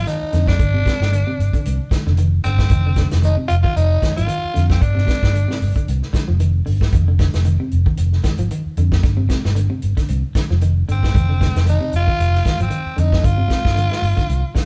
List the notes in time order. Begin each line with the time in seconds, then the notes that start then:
0.07 D#3 D#4, snare, closed hi-hat
0.23 muted fingered electric bass stroke
0.33 F2 D3, snare, closed hi-hat
0.47 D4, kick, snare
0.59 G1 D3, kick, closed hi-hat
0.74 C3
0.86 C3, kick, snare, closed hi-hat
1.00 G1, snare
1.12 D3, closed hi-hat
1.27 C3
1.39 G1, closed hi-hat
1.53 D3, muted fingered electric bass stroke, kick, closed hi-hat
1.65 C2, closed hi-hat
1.91 D3, muted fingered electric bass stroke, kick, snare, closed hi-hat
2.07 F1 D3, snare
2.17 D#3, closed hi-hat
2.44 G1 D3 C4, snare, closed hi-hat
2.58 kick, snare
2.70 F1 D#3, kick, closed hi-hat
2.86 D3
2.96 D3, kick, snare, closed hi-hat
3.11 F1, snare, closed hi-hat
3.22 D#3 D#4, closed hi-hat
3.37 C3
3.48 F1 F4, closed hi-hat
3.63 D#3 F4, kick
3.76 F1 D#4, closed hi-hat
4.02 D#3, kick, snare, closed hi-hat
4.16 G#1 F3 F4, closed hi-hat
4.27 D#3, closed hi-hat
4.44 muted fingered electric bass stroke
4.54 F2 D3, snare, closed hi-hat
4.70 C4, kick, snare
4.81 G1 D4, muted clean electric guitar stroke, kick, closed hi-hat
4.95 C3, snare
5.07 C3, kick, snare, closed hi-hat
5.23 G1, kick, snare
5.33 D3, closed hi-hat
5.48 C3, snare
5.62 G1, open hi-hat
5.76 D3, muted fingered electric bass stroke, kick, closed hi-hat
5.88 C2, closed hi-hat
6.02 snare
6.13 D3, muted fingered electric bass stroke, kick, snare, closed hi-hat
6.28 F1 F3
6.40 D#3, closed hi-hat
6.66 G1 D3, open hi-hat
6.81 kick, snare
6.92 F1 D#3, kick, closed hi-hat
7.08 D3
7.19 D3, kick, snare, closed hi-hat
7.33 F1, snare, closed hi-hat
7.45 D#3, closed hi-hat
7.60 C3
7.71 F1, closed hi-hat
7.86 D#3, kick
7.97 F1, closed hi-hat
8.13 snare
8.24 D#3, kick, snare, closed hi-hat
8.38 G#1 F3, closed hi-hat
8.51 D#3, closed hi-hat
8.66 muted fingered electric bass stroke
8.77 F2 D3, closed hi-hat
8.92 kick, snare
9.03 G1 D3, kick, snare, closed hi-hat
9.17 C3
9.29 C3, kick, snare, closed hi-hat
9.45 G1, snare
9.55 D3, closed hi-hat
9.70 C3
9.82 G1, closed hi-hat
9.97 D3, kick, snare, closed hi-hat
10.08 C2, closed hi-hat
10.35 D3, muted fingered electric bass stroke, kick, snare, closed hi-hat
10.50 F1 F3, snare
10.61 D#3, closed hi-hat
10.88 G1 D3 C4, closed hi-hat
11.03 kick, snare
11.15 F1 D#3, kick, closed hi-hat
11.29 D3
11.41 D3, kick, snare, closed hi-hat
11.55 F1, snare, closed hi-hat
11.66 D#3 D#4, closed hi-hat
11.81 C3
11.93 F1 F4, closed hi-hat
12.07 D#3, kick
12.19 F1, closed hi-hat
12.34 snare
12.45 D#3, kick, snare, closed hi-hat
12.60 G#1 F3 C4, closed hi-hat
12.70 D#3, closed hi-hat
12.86 muted fingered electric bass stroke
12.97 F2 D3 D#4, closed hi-hat
13.12 kick, snare
13.22 G1 D3 F4, kick, closed hi-hat
13.37 C3
13.48 C3, kick, snare, closed hi-hat
13.65 G1, kick, snare
13.75 D3, closed hi-hat
13.90 muted clean electric guitar stroke, snare
14.02 G1, open hi-hat
14.16 D3, muted fingered electric bass stroke, kick, snare, closed hi-hat
14.29 C2, closed hi-hat
14.55 D3, muted fingered electric bass stroke, kick, snare, closed hi-hat